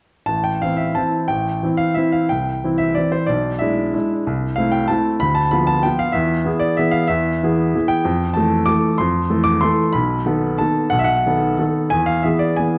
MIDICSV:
0, 0, Header, 1, 2, 480
1, 0, Start_track
1, 0, Key_signature, 0, "minor"
1, 0, Tempo, 330396
1, 436, Time_signature, 3, 2, 24, 8
1, 6202, Tempo, 315623
1, 15322, Tempo, 332410
1, 18952, End_track
2, 0, Start_track
2, 0, Title_t, "Grand piano"
2, 0, Program_c, 0, 0
2, 379, Note_on_c, 0, 81, 73
2, 410, Note_on_c, 0, 33, 38
2, 634, Note_on_c, 0, 79, 60
2, 645, Note_off_c, 0, 81, 0
2, 696, Control_c, 0, 64, 127
2, 888, Note_off_c, 0, 33, 0
2, 896, Note_off_c, 0, 79, 0
2, 897, Note_on_c, 0, 77, 59
2, 913, Note_on_c, 0, 52, 27
2, 929, Note_on_c, 0, 60, 32
2, 932, Note_on_c, 0, 64, 31
2, 1112, Note_on_c, 0, 76, 51
2, 1153, Note_off_c, 0, 77, 0
2, 1361, Note_off_c, 0, 52, 0
2, 1370, Note_off_c, 0, 60, 0
2, 1371, Note_off_c, 0, 64, 0
2, 1377, Note_on_c, 0, 81, 56
2, 1387, Note_off_c, 0, 76, 0
2, 1407, Note_on_c, 0, 52, 28
2, 1415, Note_on_c, 0, 60, 29
2, 1417, Note_on_c, 0, 64, 31
2, 1428, Control_c, 0, 64, 0
2, 1839, Note_off_c, 0, 52, 0
2, 1843, Note_off_c, 0, 60, 0
2, 1844, Note_off_c, 0, 64, 0
2, 1857, Note_on_c, 0, 79, 67
2, 1872, Note_off_c, 0, 81, 0
2, 1891, Note_on_c, 0, 33, 44
2, 2117, Control_c, 0, 64, 127
2, 2349, Note_off_c, 0, 33, 0
2, 2368, Note_on_c, 0, 52, 32
2, 2382, Note_on_c, 0, 64, 31
2, 2383, Note_on_c, 0, 60, 30
2, 2386, Control_c, 0, 64, 0
2, 2577, Note_on_c, 0, 77, 63
2, 2593, Note_off_c, 0, 79, 0
2, 2811, Note_off_c, 0, 52, 0
2, 2819, Note_off_c, 0, 60, 0
2, 2819, Note_off_c, 0, 64, 0
2, 2823, Note_on_c, 0, 76, 57
2, 2842, Note_off_c, 0, 77, 0
2, 2858, Note_on_c, 0, 52, 31
2, 2869, Note_on_c, 0, 64, 35
2, 2870, Note_on_c, 0, 60, 32
2, 3085, Note_off_c, 0, 76, 0
2, 3086, Note_on_c, 0, 77, 58
2, 3292, Note_off_c, 0, 52, 0
2, 3298, Note_off_c, 0, 64, 0
2, 3299, Note_off_c, 0, 60, 0
2, 3330, Note_on_c, 0, 79, 61
2, 3331, Note_off_c, 0, 77, 0
2, 3362, Note_on_c, 0, 36, 41
2, 3588, Control_c, 0, 64, 127
2, 3817, Note_off_c, 0, 36, 0
2, 3835, Note_on_c, 0, 52, 33
2, 3842, Note_on_c, 0, 60, 34
2, 3846, Note_on_c, 0, 64, 34
2, 4036, Note_on_c, 0, 76, 66
2, 4058, Note_off_c, 0, 79, 0
2, 4266, Note_off_c, 0, 52, 0
2, 4270, Note_off_c, 0, 60, 0
2, 4272, Note_off_c, 0, 64, 0
2, 4280, Note_on_c, 0, 74, 57
2, 4292, Note_off_c, 0, 76, 0
2, 4317, Control_c, 0, 64, 0
2, 4323, Note_on_c, 0, 52, 32
2, 4326, Note_on_c, 0, 60, 29
2, 4326, Note_on_c, 0, 64, 31
2, 4529, Note_on_c, 0, 72, 54
2, 4534, Note_off_c, 0, 74, 0
2, 4742, Note_off_c, 0, 52, 0
2, 4743, Note_on_c, 0, 74, 64
2, 4744, Note_off_c, 0, 60, 0
2, 4744, Note_off_c, 0, 64, 0
2, 4772, Note_off_c, 0, 72, 0
2, 4773, Note_on_c, 0, 35, 44
2, 5060, Control_c, 0, 64, 127
2, 5210, Note_on_c, 0, 76, 60
2, 5226, Note_off_c, 0, 74, 0
2, 5227, Note_off_c, 0, 35, 0
2, 5242, Note_on_c, 0, 56, 35
2, 5248, Note_on_c, 0, 62, 30
2, 5255, Note_on_c, 0, 64, 36
2, 5681, Note_off_c, 0, 56, 0
2, 5685, Note_off_c, 0, 62, 0
2, 5688, Note_off_c, 0, 64, 0
2, 5724, Note_on_c, 0, 62, 32
2, 5726, Note_on_c, 0, 56, 33
2, 5732, Note_on_c, 0, 64, 37
2, 5754, Control_c, 0, 64, 0
2, 5956, Note_off_c, 0, 76, 0
2, 6150, Note_off_c, 0, 62, 0
2, 6151, Note_off_c, 0, 56, 0
2, 6155, Note_off_c, 0, 64, 0
2, 6199, Note_on_c, 0, 36, 51
2, 6475, Control_c, 0, 64, 127
2, 6639, Note_on_c, 0, 77, 63
2, 6658, Note_off_c, 0, 36, 0
2, 6673, Note_on_c, 0, 57, 34
2, 6680, Note_on_c, 0, 60, 34
2, 6696, Note_on_c, 0, 64, 37
2, 6882, Note_on_c, 0, 79, 63
2, 6893, Note_off_c, 0, 77, 0
2, 7105, Note_off_c, 0, 57, 0
2, 7109, Note_off_c, 0, 60, 0
2, 7117, Note_off_c, 0, 64, 0
2, 7126, Note_on_c, 0, 81, 68
2, 7139, Note_off_c, 0, 79, 0
2, 7164, Control_c, 0, 64, 0
2, 7165, Note_on_c, 0, 57, 35
2, 7172, Note_on_c, 0, 64, 39
2, 7176, Note_on_c, 0, 60, 30
2, 7605, Note_off_c, 0, 57, 0
2, 7609, Note_off_c, 0, 64, 0
2, 7611, Note_off_c, 0, 60, 0
2, 7616, Note_on_c, 0, 83, 85
2, 7634, Note_off_c, 0, 81, 0
2, 7654, Note_on_c, 0, 38, 43
2, 7842, Note_on_c, 0, 81, 65
2, 7870, Note_off_c, 0, 83, 0
2, 7890, Control_c, 0, 64, 127
2, 8092, Note_on_c, 0, 83, 70
2, 8101, Note_off_c, 0, 81, 0
2, 8112, Note_off_c, 0, 38, 0
2, 8116, Note_on_c, 0, 53, 38
2, 8121, Note_on_c, 0, 59, 35
2, 8129, Note_on_c, 0, 65, 40
2, 8332, Note_on_c, 0, 81, 73
2, 8348, Note_off_c, 0, 83, 0
2, 8556, Note_off_c, 0, 53, 0
2, 8559, Note_off_c, 0, 59, 0
2, 8563, Note_off_c, 0, 65, 0
2, 8574, Note_on_c, 0, 79, 64
2, 8592, Note_off_c, 0, 81, 0
2, 8601, Note_on_c, 0, 53, 32
2, 8617, Note_on_c, 0, 59, 31
2, 8620, Note_on_c, 0, 65, 37
2, 8627, Control_c, 0, 64, 0
2, 8819, Note_on_c, 0, 77, 70
2, 8834, Note_off_c, 0, 79, 0
2, 9022, Note_on_c, 0, 76, 73
2, 9032, Note_off_c, 0, 53, 0
2, 9041, Note_off_c, 0, 59, 0
2, 9042, Note_off_c, 0, 65, 0
2, 9059, Note_on_c, 0, 40, 52
2, 9068, Note_off_c, 0, 77, 0
2, 9315, Control_c, 0, 64, 127
2, 9511, Note_on_c, 0, 52, 35
2, 9520, Note_off_c, 0, 40, 0
2, 9528, Note_on_c, 0, 59, 39
2, 9531, Note_on_c, 0, 68, 38
2, 9566, Control_c, 0, 64, 0
2, 9739, Note_on_c, 0, 74, 75
2, 9756, Note_off_c, 0, 76, 0
2, 9966, Note_off_c, 0, 52, 0
2, 9976, Note_off_c, 0, 59, 0
2, 9977, Note_off_c, 0, 68, 0
2, 10003, Note_on_c, 0, 76, 71
2, 10011, Note_off_c, 0, 74, 0
2, 10031, Note_on_c, 0, 52, 36
2, 10038, Note_on_c, 0, 68, 35
2, 10041, Note_on_c, 0, 59, 39
2, 10225, Note_on_c, 0, 77, 69
2, 10263, Note_off_c, 0, 76, 0
2, 10465, Note_off_c, 0, 52, 0
2, 10469, Note_off_c, 0, 68, 0
2, 10469, Note_on_c, 0, 76, 77
2, 10470, Note_off_c, 0, 59, 0
2, 10487, Note_off_c, 0, 77, 0
2, 10506, Note_on_c, 0, 40, 53
2, 10805, Control_c, 0, 64, 127
2, 10979, Note_off_c, 0, 40, 0
2, 11012, Note_on_c, 0, 52, 34
2, 11019, Note_on_c, 0, 59, 40
2, 11022, Note_on_c, 0, 68, 47
2, 11454, Note_off_c, 0, 52, 0
2, 11458, Note_off_c, 0, 59, 0
2, 11459, Note_off_c, 0, 68, 0
2, 11490, Note_on_c, 0, 52, 40
2, 11502, Note_on_c, 0, 68, 35
2, 11504, Note_on_c, 0, 59, 38
2, 11513, Control_c, 0, 64, 0
2, 11694, Note_on_c, 0, 79, 75
2, 11712, Note_off_c, 0, 76, 0
2, 11917, Note_off_c, 0, 52, 0
2, 11923, Note_off_c, 0, 68, 0
2, 11925, Note_off_c, 0, 59, 0
2, 11950, Note_on_c, 0, 41, 56
2, 12193, Control_c, 0, 64, 127
2, 12386, Note_on_c, 0, 81, 64
2, 12413, Note_off_c, 0, 41, 0
2, 12416, Note_off_c, 0, 79, 0
2, 12419, Note_on_c, 0, 52, 41
2, 12434, Note_on_c, 0, 57, 40
2, 12440, Note_on_c, 0, 69, 42
2, 12861, Note_off_c, 0, 52, 0
2, 12869, Note_off_c, 0, 57, 0
2, 12872, Note_off_c, 0, 69, 0
2, 12873, Note_on_c, 0, 86, 84
2, 12893, Note_off_c, 0, 81, 0
2, 12906, Note_on_c, 0, 57, 35
2, 12909, Note_on_c, 0, 52, 33
2, 12917, Note_on_c, 0, 69, 41
2, 12941, Control_c, 0, 64, 0
2, 13348, Note_off_c, 0, 57, 0
2, 13349, Note_off_c, 0, 52, 0
2, 13354, Note_off_c, 0, 69, 0
2, 13365, Note_on_c, 0, 84, 73
2, 13380, Note_off_c, 0, 86, 0
2, 13404, Note_on_c, 0, 41, 56
2, 13712, Control_c, 0, 64, 127
2, 13852, Note_on_c, 0, 57, 38
2, 13855, Note_on_c, 0, 52, 39
2, 13862, Note_off_c, 0, 41, 0
2, 13862, Note_on_c, 0, 69, 39
2, 14062, Note_on_c, 0, 86, 83
2, 14101, Note_off_c, 0, 84, 0
2, 14305, Note_off_c, 0, 57, 0
2, 14307, Note_off_c, 0, 52, 0
2, 14311, Note_off_c, 0, 69, 0
2, 14321, Note_on_c, 0, 84, 74
2, 14338, Note_off_c, 0, 86, 0
2, 14349, Note_on_c, 0, 52, 41
2, 14349, Note_on_c, 0, 57, 37
2, 14360, Note_on_c, 0, 69, 42
2, 14387, Control_c, 0, 64, 0
2, 14789, Note_off_c, 0, 52, 0
2, 14789, Note_off_c, 0, 57, 0
2, 14795, Note_off_c, 0, 69, 0
2, 14804, Note_on_c, 0, 83, 77
2, 14824, Note_off_c, 0, 84, 0
2, 14840, Note_on_c, 0, 35, 54
2, 15156, Control_c, 0, 64, 127
2, 15302, Note_off_c, 0, 35, 0
2, 15308, Note_on_c, 0, 51, 37
2, 15320, Note_on_c, 0, 59, 42
2, 15325, Note_on_c, 0, 69, 40
2, 15749, Note_off_c, 0, 51, 0
2, 15755, Note_off_c, 0, 59, 0
2, 15758, Note_off_c, 0, 69, 0
2, 15781, Note_on_c, 0, 81, 67
2, 15783, Note_off_c, 0, 83, 0
2, 15818, Control_c, 0, 64, 0
2, 15818, Note_on_c, 0, 51, 35
2, 15818, Note_on_c, 0, 59, 37
2, 15818, Note_on_c, 0, 69, 39
2, 16236, Note_on_c, 0, 78, 76
2, 16240, Note_off_c, 0, 51, 0
2, 16240, Note_off_c, 0, 59, 0
2, 16240, Note_off_c, 0, 69, 0
2, 16269, Note_off_c, 0, 81, 0
2, 16271, Note_on_c, 0, 35, 50
2, 16354, Note_off_c, 0, 78, 0
2, 16367, Note_on_c, 0, 76, 66
2, 16445, Note_on_c, 0, 78, 80
2, 16468, Note_off_c, 0, 76, 0
2, 16531, Control_c, 0, 64, 127
2, 16732, Note_off_c, 0, 35, 0
2, 16764, Note_on_c, 0, 51, 38
2, 16773, Note_on_c, 0, 59, 40
2, 16778, Note_on_c, 0, 69, 41
2, 17194, Note_off_c, 0, 51, 0
2, 17199, Note_off_c, 0, 59, 0
2, 17201, Note_off_c, 0, 69, 0
2, 17221, Note_off_c, 0, 78, 0
2, 17229, Note_on_c, 0, 51, 35
2, 17236, Note_on_c, 0, 59, 31
2, 17238, Note_on_c, 0, 69, 40
2, 17247, Control_c, 0, 64, 0
2, 17666, Note_off_c, 0, 51, 0
2, 17670, Note_off_c, 0, 59, 0
2, 17671, Note_off_c, 0, 69, 0
2, 17684, Note_on_c, 0, 80, 84
2, 17714, Note_on_c, 0, 40, 55
2, 17914, Note_on_c, 0, 77, 70
2, 17935, Note_off_c, 0, 80, 0
2, 17966, Control_c, 0, 64, 127
2, 18151, Note_on_c, 0, 76, 57
2, 18171, Note_off_c, 0, 77, 0
2, 18173, Note_off_c, 0, 40, 0
2, 18176, Note_on_c, 0, 52, 36
2, 18190, Note_on_c, 0, 59, 35
2, 18190, Note_on_c, 0, 68, 39
2, 18203, Control_c, 0, 64, 0
2, 18390, Note_on_c, 0, 74, 65
2, 18414, Note_off_c, 0, 76, 0
2, 18624, Note_off_c, 0, 52, 0
2, 18631, Note_off_c, 0, 59, 0
2, 18631, Note_off_c, 0, 68, 0
2, 18642, Note_on_c, 0, 80, 62
2, 18658, Note_off_c, 0, 74, 0
2, 18677, Note_on_c, 0, 52, 33
2, 18683, Note_on_c, 0, 59, 32
2, 18691, Note_on_c, 0, 68, 37
2, 18952, Note_off_c, 0, 52, 0
2, 18952, Note_off_c, 0, 59, 0
2, 18952, Note_off_c, 0, 68, 0
2, 18952, Note_off_c, 0, 80, 0
2, 18952, End_track
0, 0, End_of_file